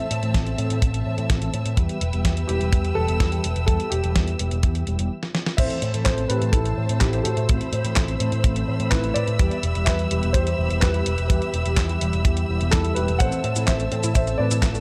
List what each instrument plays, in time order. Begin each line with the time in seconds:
Already playing: string section C4 E5 A5 E6, grand piano E5
0.11 picked electric bass A2, closed hi-hat
0.23 analog polysynth A2 E3 A3 C4 A4, picked electric bass A2, closed hi-hat
0.34 picked electric bass A1, kick, snare, closed hi-hat
0.47 closed hi-hat
0.58 picked electric bass A2, analog polysynth A2 E3 A3 C4 A4, closed hi-hat
0.70 picked electric bass A2, closed hi-hat
0.82 picked electric bass A1, analog polysynth A2 E3 A3 C4 A4, kick, closed hi-hat
0.94 closed hi-hat
1.06 analog polysynth A2 E3 A3 C4 A4, picked electric bass A2
1.18 picked electric bass A2, closed hi-hat
1.30 picked electric bass A1, kick, snare, closed hi-hat
1.42 analog polysynth A2 E3 A3 C4 A4, closed hi-hat
1.54 picked electric bass A2, closed hi-hat
1.66 picked electric bass A2, closed hi-hat
1.77 picked electric bass E2, analog polysynth E3 G3 B3 G4, string section B4 G5 E6, kick, closed hi-hat
1.89 closed hi-hat
2.01 picked electric bass E1, closed hi-hat
2.13 picked electric bass E1, analog polysynth E3 G3 B3 G4, closed hi-hat
2.25 picked electric bass E2, kick, snare, closed hi-hat
2.37 closed hi-hat
2.48 picked electric bass E1, analog polysynth E3 G3 B3 G4, grand piano G4, closed hi-hat
2.61 picked electric bass E1, closed hi-hat
2.73 picked electric bass E2, analog polysynth E3 G3 B3 G4, kick, closed hi-hat
2.85 closed hi-hat
2.95 picked electric bass E1, analog polysynth E3 G3 B3 G4, grand piano A4
3.08 picked electric bass E1, closed hi-hat
3.20 picked electric bass E2, kick, snare, closed hi-hat
3.32 analog polysynth E3 G3 B3 G4, closed hi-hat
3.44 picked electric bass E1, closed hi-hat
3.56 picked electric bass E1, closed hi-hat
3.66 picked electric bass E2, analog polysynth E3 G3 B3 G4, grand piano A4, kick, closed hi-hat
3.80 closed hi-hat
3.90 picked electric bass E1, grand piano G4, closed hi-hat
4.04 picked electric bass E1, analog polysynth E3 G3 B3 G4, closed hi-hat
4.16 picked electric bass E2, kick, snare, closed hi-hat
4.28 closed hi-hat
4.39 picked electric bass E1, analog polysynth E3 G3 B3 G4, closed hi-hat
4.51 picked electric bass E1, closed hi-hat
4.63 picked electric bass E2, analog polysynth E3 G3 B3 G4, kick, closed hi-hat
4.75 closed hi-hat
4.87 picked electric bass E1, analog polysynth E3 G3 B3 G4, closed hi-hat
4.99 picked electric bass E1, closed hi-hat
5.23 snare
5.35 snare
5.46 snare
5.57 picked electric bass A1, analog polysynth A2 E3 A3 C4 A4, string section C5 E5 A5 E6, grand piano C5 E5, kick, closed hi-hat, crash
5.70 closed hi-hat
5.82 picked electric bass A2, closed hi-hat
5.94 picked electric bass A2, analog polysynth A2 E3 A3 C4 A4, closed hi-hat
6.05 picked electric bass A1, grand piano A4 C5, kick, snare, clap, closed hi-hat
6.18 closed hi-hat
6.28 picked electric bass A2, analog polysynth A2 E3 A3 C4 A4, grand piano G4 B4, closed hi-hat
6.42 picked electric bass A2, closed hi-hat
6.52 picked electric bass A1, analog polysynth C4, grand piano E4 A4, kick, closed hi-hat
6.66 closed hi-hat
6.77 picked electric bass A2, analog polysynth A2 E3 A3 C4 A4
6.89 picked electric bass A2, closed hi-hat
7.00 picked electric bass A1, grand piano E4 G4, kick, snare, clap, closed hi-hat
7.13 analog polysynth A2 E3 A3 C4 A4, closed hi-hat
7.23 picked electric bass A2, grand piano F#4 A4, closed hi-hat
7.37 picked electric bass A2, closed hi-hat
7.49 picked electric bass A1, analog polysynth A2 E3 A3 C4 A4, string section B5, kick, closed hi-hat
7.61 closed hi-hat
7.73 picked electric bass A2, closed hi-hat
7.84 picked electric bass A2, analog polysynth A2 E3 A3 C4 A4, closed hi-hat
7.96 picked electric bass A1, kick, snare, clap, closed hi-hat
8.08 closed hi-hat
8.20 picked electric bass A2, analog polysynth A2 E3 A3 C4 A4, closed hi-hat
8.32 picked electric bass A2, closed hi-hat
8.44 picked electric bass A1, analog polysynth A2 E3 A3 C4 A4, kick, closed hi-hat
8.56 closed hi-hat
8.68 picked electric bass A2, analog polysynth A2 E3 A3 C4 A4
8.80 picked electric bass A2, closed hi-hat
8.90 picked electric bass A1, grand piano E4 B4, kick, snare, clap, closed hi-hat
9.04 analog polysynth A2 E3 A3 C4 A4, closed hi-hat
9.14 picked electric bass A2, grand piano B4 D5, closed hi-hat
9.27 picked electric bass A2, closed hi-hat
9.39 picked electric bass E2, analog polysynth E3 G3 B3 G4, string section G4, kick, closed hi-hat
9.51 closed hi-hat
9.63 picked electric bass E1, closed hi-hat
9.75 picked electric bass E1, analog polysynth E3 G3 B3 G4, closed hi-hat
9.85 picked electric bass E2, grand piano B4 E5, kick, snare, clap, closed hi-hat
9.99 closed hi-hat
10.11 picked electric bass E1, analog polysynth E3 G3 B3 G4, closed hi-hat
10.23 picked electric bass E1, closed hi-hat
10.33 picked electric bass E2, analog polysynth E3 G3 B3 G4, grand piano G4 C5, kick, closed hi-hat
10.47 closed hi-hat
10.58 picked electric bass E1, analog polysynth E3 G3 B3 G4
10.70 picked electric bass E1, closed hi-hat
10.80 picked electric bass E2, grand piano G4 B4, kick, snare, clap, closed hi-hat
10.94 analog polysynth E3 G3 B3 G4, closed hi-hat
11.06 picked electric bass E1, closed hi-hat
11.18 picked electric bass E1, closed hi-hat
11.28 picked electric bass E2, analog polysynth E3 G3 B3 G4, grand piano G4 B4, kick, closed hi-hat
11.42 closed hi-hat
11.54 picked electric bass E1, closed hi-hat
11.66 picked electric bass E1, analog polysynth E3 G3 B3 G4, closed hi-hat
11.77 picked electric bass E2, kick, snare, clap, closed hi-hat
11.89 closed hi-hat
12.01 picked electric bass E1, analog polysynth E3 G3 B3 G4, closed hi-hat
12.13 picked electric bass E1, closed hi-hat
12.25 picked electric bass E2, analog polysynth E3 G3 B3 G4, kick, closed hi-hat
12.37 closed hi-hat
12.49 picked electric bass E1, analog polysynth E3 G3 B3 G4
12.61 picked electric bass E1, closed hi-hat
12.71 picked electric bass E2, grand piano E4 A4, kick, snare, clap, closed hi-hat
12.85 analog polysynth E3 G3 B3 G4, closed hi-hat
12.95 picked electric bass E1, analog polysynth A2 E3 G3 B3 G4, grand piano G4 B4, closed hi-hat
13.08 picked electric bass E1, closed hi-hat
13.19 picked electric bass A1, analog polysynth A2 E3 A3 C4 A4, synth arpeggio sound E3, string section A4 A5, grand piano C5 F#5, kick, closed hi-hat, cabasa
13.32 synth arpeggio sound A3, closed hi-hat, cabasa
13.44 picked electric bass A2, synth arpeggio sound C4, closed hi-hat
13.56 analog polysynth A2 E3 A3 C4 A4, picked electric bass A2, synth arpeggio sound E4, closed hi-hat, cabasa
13.66 picked electric bass A1, synth arpeggio sound E3, grand piano C5 E5, kick, snare, clap, closed hi-hat, cabasa
13.80 synth arpeggio sound A3, closed hi-hat, cabasa
13.92 analog polysynth A2 E3 A3 C4 A4, picked electric bass A2, synth arpeggio sound C4, closed hi-hat
14.03 picked electric bass A2, synth arpeggio sound E4, closed hi-hat, cabasa
14.14 picked electric bass A1, analog polysynth A2 E3 A3 A4, synth arpeggio sound E3, grand piano C5 E5, kick, closed hi-hat, cabasa
14.27 synth arpeggio sound A3, closed hi-hat, cabasa
14.38 picked electric bass A2, analog polysynth A2 E3 A3 C4 A4, synth arpeggio sound C4, grand piano B4 D5
14.51 picked electric bass A2, synth arpeggio sound E4, closed hi-hat, cabasa
14.62 picked electric bass A1, synth arpeggio sound E3, kick, snare, clap, closed hi-hat, cabasa
14.75 analog polysynth A2 E3 A3 C4 A4, synth arpeggio sound A3, closed hi-hat, cabasa